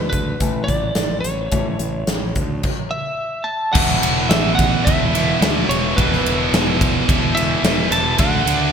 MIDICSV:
0, 0, Header, 1, 6, 480
1, 0, Start_track
1, 0, Tempo, 556586
1, 1315, Time_signature, 4, 2, 24, 8
1, 7521, End_track
2, 0, Start_track
2, 0, Title_t, "Lead electric guitar"
2, 0, Program_c, 0, 29
2, 82, Note_on_c, 0, 71, 82
2, 551, Note_on_c, 0, 74, 94
2, 593, Note_off_c, 0, 71, 0
2, 1036, Note_off_c, 0, 74, 0
2, 1039, Note_on_c, 0, 73, 76
2, 2506, Note_on_c, 0, 76, 79
2, 2950, Note_off_c, 0, 73, 0
2, 2966, Note_on_c, 0, 81, 80
2, 3009, Note_off_c, 0, 76, 0
2, 3213, Note_on_c, 0, 78, 101
2, 3232, Note_off_c, 0, 81, 0
2, 3699, Note_off_c, 0, 78, 0
2, 3703, Note_on_c, 0, 76, 83
2, 3920, Note_off_c, 0, 76, 0
2, 3923, Note_on_c, 0, 78, 90
2, 4180, Note_on_c, 0, 76, 91
2, 4189, Note_off_c, 0, 78, 0
2, 4874, Note_off_c, 0, 76, 0
2, 4910, Note_on_c, 0, 73, 82
2, 5145, Note_on_c, 0, 71, 73
2, 5161, Note_off_c, 0, 73, 0
2, 5833, Note_off_c, 0, 71, 0
2, 6337, Note_on_c, 0, 76, 98
2, 6832, Note_on_c, 0, 81, 103
2, 6836, Note_off_c, 0, 76, 0
2, 7053, Note_off_c, 0, 81, 0
2, 7069, Note_on_c, 0, 78, 94
2, 7521, Note_off_c, 0, 78, 0
2, 7521, End_track
3, 0, Start_track
3, 0, Title_t, "Steel-string acoustic guitar"
3, 0, Program_c, 1, 25
3, 0, Note_on_c, 1, 45, 62
3, 0, Note_on_c, 1, 52, 70
3, 88, Note_off_c, 1, 45, 0
3, 90, Note_off_c, 1, 52, 0
3, 118, Note_on_c, 1, 45, 55
3, 124, Note_on_c, 1, 52, 66
3, 330, Note_off_c, 1, 45, 0
3, 333, Note_off_c, 1, 52, 0
3, 354, Note_on_c, 1, 45, 75
3, 360, Note_on_c, 1, 52, 72
3, 367, Note_on_c, 1, 57, 72
3, 578, Note_off_c, 1, 45, 0
3, 581, Note_off_c, 1, 52, 0
3, 585, Note_off_c, 1, 57, 0
3, 592, Note_on_c, 1, 45, 61
3, 598, Note_on_c, 1, 52, 64
3, 808, Note_off_c, 1, 45, 0
3, 811, Note_off_c, 1, 52, 0
3, 834, Note_on_c, 1, 45, 58
3, 838, Note_on_c, 1, 52, 63
3, 1050, Note_off_c, 1, 45, 0
3, 1052, Note_off_c, 1, 52, 0
3, 1076, Note_on_c, 1, 45, 59
3, 1081, Note_on_c, 1, 52, 66
3, 1292, Note_off_c, 1, 45, 0
3, 1295, Note_off_c, 1, 52, 0
3, 1306, Note_on_c, 1, 45, 75
3, 1311, Note_on_c, 1, 52, 83
3, 1315, Note_on_c, 1, 57, 76
3, 1537, Note_off_c, 1, 45, 0
3, 1540, Note_off_c, 1, 52, 0
3, 1542, Note_off_c, 1, 57, 0
3, 1552, Note_on_c, 1, 45, 47
3, 1553, Note_on_c, 1, 52, 55
3, 1771, Note_off_c, 1, 45, 0
3, 1772, Note_off_c, 1, 52, 0
3, 1792, Note_on_c, 1, 45, 61
3, 1794, Note_on_c, 1, 52, 59
3, 2012, Note_off_c, 1, 45, 0
3, 2013, Note_off_c, 1, 52, 0
3, 2034, Note_on_c, 1, 45, 57
3, 2038, Note_on_c, 1, 52, 60
3, 2253, Note_off_c, 1, 45, 0
3, 2255, Note_off_c, 1, 52, 0
3, 7521, End_track
4, 0, Start_track
4, 0, Title_t, "Distorted electric guitar"
4, 0, Program_c, 2, 30
4, 3228, Note_on_c, 2, 40, 89
4, 3243, Note_on_c, 2, 47, 95
4, 3253, Note_on_c, 2, 52, 105
4, 4419, Note_off_c, 2, 40, 0
4, 4422, Note_off_c, 2, 52, 0
4, 4426, Note_off_c, 2, 47, 0
4, 4432, Note_on_c, 2, 52, 82
4, 4450, Note_on_c, 2, 47, 78
4, 4462, Note_on_c, 2, 40, 66
4, 4661, Note_off_c, 2, 40, 0
4, 4661, Note_off_c, 2, 52, 0
4, 4670, Note_off_c, 2, 47, 0
4, 4671, Note_on_c, 2, 40, 78
4, 4689, Note_on_c, 2, 47, 79
4, 4694, Note_on_c, 2, 52, 96
4, 5139, Note_off_c, 2, 40, 0
4, 5148, Note_off_c, 2, 47, 0
4, 5151, Note_off_c, 2, 52, 0
4, 5152, Note_on_c, 2, 40, 85
4, 5170, Note_on_c, 2, 47, 101
4, 5178, Note_on_c, 2, 52, 92
4, 6324, Note_off_c, 2, 52, 0
4, 6335, Note_off_c, 2, 40, 0
4, 6335, Note_on_c, 2, 52, 82
4, 6341, Note_off_c, 2, 47, 0
4, 6351, Note_on_c, 2, 47, 77
4, 6361, Note_on_c, 2, 40, 72
4, 6567, Note_off_c, 2, 40, 0
4, 6568, Note_off_c, 2, 52, 0
4, 6576, Note_off_c, 2, 47, 0
4, 6578, Note_on_c, 2, 40, 73
4, 6592, Note_on_c, 2, 47, 78
4, 6603, Note_on_c, 2, 52, 88
4, 7048, Note_off_c, 2, 40, 0
4, 7055, Note_off_c, 2, 47, 0
4, 7059, Note_on_c, 2, 50, 89
4, 7060, Note_off_c, 2, 52, 0
4, 7073, Note_on_c, 2, 57, 100
4, 7086, Note_on_c, 2, 62, 102
4, 7521, Note_off_c, 2, 50, 0
4, 7521, Note_off_c, 2, 57, 0
4, 7521, Note_off_c, 2, 62, 0
4, 7521, End_track
5, 0, Start_track
5, 0, Title_t, "Fingered electric bass"
5, 0, Program_c, 3, 33
5, 0, Note_on_c, 3, 38, 75
5, 287, Note_off_c, 3, 38, 0
5, 346, Note_on_c, 3, 33, 73
5, 770, Note_off_c, 3, 33, 0
5, 823, Note_on_c, 3, 33, 77
5, 1038, Note_off_c, 3, 33, 0
5, 1075, Note_on_c, 3, 33, 72
5, 1286, Note_off_c, 3, 33, 0
5, 1309, Note_on_c, 3, 33, 77
5, 1523, Note_off_c, 3, 33, 0
5, 1552, Note_on_c, 3, 33, 67
5, 1765, Note_off_c, 3, 33, 0
5, 1792, Note_on_c, 3, 33, 69
5, 2005, Note_off_c, 3, 33, 0
5, 2035, Note_on_c, 3, 38, 72
5, 2248, Note_off_c, 3, 38, 0
5, 3235, Note_on_c, 3, 28, 101
5, 3437, Note_off_c, 3, 28, 0
5, 3464, Note_on_c, 3, 28, 87
5, 3671, Note_off_c, 3, 28, 0
5, 3703, Note_on_c, 3, 33, 88
5, 4109, Note_off_c, 3, 33, 0
5, 4201, Note_on_c, 3, 28, 81
5, 4599, Note_off_c, 3, 28, 0
5, 4665, Note_on_c, 3, 38, 92
5, 4870, Note_off_c, 3, 38, 0
5, 4909, Note_on_c, 3, 28, 87
5, 5112, Note_off_c, 3, 28, 0
5, 5151, Note_on_c, 3, 28, 99
5, 5352, Note_off_c, 3, 28, 0
5, 5394, Note_on_c, 3, 28, 91
5, 5594, Note_off_c, 3, 28, 0
5, 5630, Note_on_c, 3, 28, 92
5, 6029, Note_off_c, 3, 28, 0
5, 6114, Note_on_c, 3, 28, 84
5, 6511, Note_off_c, 3, 28, 0
5, 6584, Note_on_c, 3, 28, 99
5, 6786, Note_off_c, 3, 28, 0
5, 6820, Note_on_c, 3, 28, 84
5, 7023, Note_off_c, 3, 28, 0
5, 7060, Note_on_c, 3, 38, 92
5, 7262, Note_off_c, 3, 38, 0
5, 7297, Note_on_c, 3, 38, 84
5, 7500, Note_off_c, 3, 38, 0
5, 7521, End_track
6, 0, Start_track
6, 0, Title_t, "Drums"
6, 108, Note_on_c, 9, 42, 54
6, 109, Note_on_c, 9, 36, 75
6, 195, Note_off_c, 9, 42, 0
6, 196, Note_off_c, 9, 36, 0
6, 348, Note_on_c, 9, 42, 70
6, 350, Note_on_c, 9, 36, 71
6, 435, Note_off_c, 9, 42, 0
6, 436, Note_off_c, 9, 36, 0
6, 590, Note_on_c, 9, 36, 70
6, 590, Note_on_c, 9, 42, 50
6, 677, Note_off_c, 9, 36, 0
6, 677, Note_off_c, 9, 42, 0
6, 821, Note_on_c, 9, 42, 70
6, 823, Note_on_c, 9, 38, 80
6, 907, Note_off_c, 9, 42, 0
6, 909, Note_off_c, 9, 38, 0
6, 1072, Note_on_c, 9, 42, 51
6, 1158, Note_off_c, 9, 42, 0
6, 1307, Note_on_c, 9, 42, 63
6, 1313, Note_on_c, 9, 36, 89
6, 1394, Note_off_c, 9, 42, 0
6, 1399, Note_off_c, 9, 36, 0
6, 1547, Note_on_c, 9, 42, 49
6, 1633, Note_off_c, 9, 42, 0
6, 1788, Note_on_c, 9, 42, 65
6, 1790, Note_on_c, 9, 38, 84
6, 1874, Note_off_c, 9, 42, 0
6, 1876, Note_off_c, 9, 38, 0
6, 2031, Note_on_c, 9, 42, 47
6, 2034, Note_on_c, 9, 36, 67
6, 2117, Note_off_c, 9, 42, 0
6, 2121, Note_off_c, 9, 36, 0
6, 2270, Note_on_c, 9, 49, 70
6, 2275, Note_on_c, 9, 36, 84
6, 2356, Note_off_c, 9, 49, 0
6, 2362, Note_off_c, 9, 36, 0
6, 3233, Note_on_c, 9, 49, 114
6, 3237, Note_on_c, 9, 36, 113
6, 3319, Note_off_c, 9, 49, 0
6, 3323, Note_off_c, 9, 36, 0
6, 3476, Note_on_c, 9, 51, 85
6, 3562, Note_off_c, 9, 51, 0
6, 3713, Note_on_c, 9, 51, 109
6, 3715, Note_on_c, 9, 38, 111
6, 3799, Note_off_c, 9, 51, 0
6, 3801, Note_off_c, 9, 38, 0
6, 3956, Note_on_c, 9, 51, 82
6, 3959, Note_on_c, 9, 36, 92
6, 4043, Note_off_c, 9, 51, 0
6, 4045, Note_off_c, 9, 36, 0
6, 4200, Note_on_c, 9, 36, 112
6, 4203, Note_on_c, 9, 51, 108
6, 4286, Note_off_c, 9, 36, 0
6, 4289, Note_off_c, 9, 51, 0
6, 4441, Note_on_c, 9, 51, 76
6, 4527, Note_off_c, 9, 51, 0
6, 4676, Note_on_c, 9, 51, 99
6, 4678, Note_on_c, 9, 38, 113
6, 4762, Note_off_c, 9, 51, 0
6, 4764, Note_off_c, 9, 38, 0
6, 4922, Note_on_c, 9, 51, 78
6, 5008, Note_off_c, 9, 51, 0
6, 5157, Note_on_c, 9, 36, 109
6, 5159, Note_on_c, 9, 51, 94
6, 5243, Note_off_c, 9, 36, 0
6, 5245, Note_off_c, 9, 51, 0
6, 5284, Note_on_c, 9, 38, 34
6, 5371, Note_off_c, 9, 38, 0
6, 5402, Note_on_c, 9, 51, 74
6, 5488, Note_off_c, 9, 51, 0
6, 5638, Note_on_c, 9, 51, 93
6, 5640, Note_on_c, 9, 38, 109
6, 5724, Note_off_c, 9, 51, 0
6, 5726, Note_off_c, 9, 38, 0
6, 5874, Note_on_c, 9, 36, 96
6, 5877, Note_on_c, 9, 51, 76
6, 5961, Note_off_c, 9, 36, 0
6, 5964, Note_off_c, 9, 51, 0
6, 6114, Note_on_c, 9, 36, 113
6, 6117, Note_on_c, 9, 51, 98
6, 6200, Note_off_c, 9, 36, 0
6, 6203, Note_off_c, 9, 51, 0
6, 6357, Note_on_c, 9, 51, 75
6, 6443, Note_off_c, 9, 51, 0
6, 6592, Note_on_c, 9, 51, 96
6, 6594, Note_on_c, 9, 38, 110
6, 6679, Note_off_c, 9, 51, 0
6, 6680, Note_off_c, 9, 38, 0
6, 6829, Note_on_c, 9, 51, 76
6, 6915, Note_off_c, 9, 51, 0
6, 7058, Note_on_c, 9, 51, 104
6, 7064, Note_on_c, 9, 36, 112
6, 7144, Note_off_c, 9, 51, 0
6, 7150, Note_off_c, 9, 36, 0
6, 7307, Note_on_c, 9, 51, 84
6, 7393, Note_off_c, 9, 51, 0
6, 7521, End_track
0, 0, End_of_file